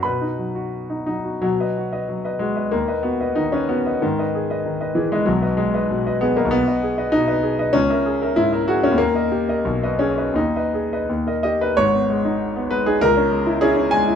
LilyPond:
\new Staff \with { instrumentName = "Grand piano" } { \time 2/4 \key b \major \tempo 4 = 95 << { b,16 dis'16 fis16 fis'8 dis'16 fis16 fis'16 | b,16 <b' dis''>16 fis'16 <b' dis''>16 fis16 <b' dis''>16 fis'16 <b' dis''>16 | dis,16 <b' dis''>16 fis'16 <b' dis''>16 dis16 <b' dis''>16 fis'16 <b' dis''>16 | gis,16 <b' dis''>16 gis'16 <b' dis''>16 dis16 <b' dis''>16 gis'16 <b' dis''>16 |
b,,16 <b' dis''>16 gis'16 <b' dis''>16 b,16 <b' dis''>16 gis'16 <b' dis''>16 | \key gis \minor b,,16 <b' dis''>16 gis'16 <b' dis''>16 b,16 <b' dis''>16 gis'16 <b' dis''>16 | cis,16 <ais' e''>16 gis'16 <ais' e''>16 gis,16 <ais' e''>16 gis'16 <ais' e''>16 | dis,16 <ais' dis''>16 g'16 <ais' dis''>16 b,,16 <b' dis''>16 gis'16 <b' dis''>16 |
dis,16 <b' dis''>16 gis'16 <b' dis''>16 dis,16 <ais' dis''>16 g'16 <ais' dis''>16 | <gis,, gis,>16 b16 gis16 dis'8 b16 gis16 dis'16 | cis,16 cis'16 gis16 e'8 cis'16 gis16 e'16 | } \\ { <b' b''>4 r8 dis'8 | fis4. gis8 | ais8 b8 dis'16 cis'16 b8 | dis4. e16 gis16 |
fis8 gis4 b16 ais16 | b4 dis'4 | cis'4 e'8 fis'16 cis'16 | ais4. cis'8 |
dis'4. dis''16 b'16 | cis''4. b'16 gis'16 | ais'4 <cis' e' gis'>8 gis''8 | } >> }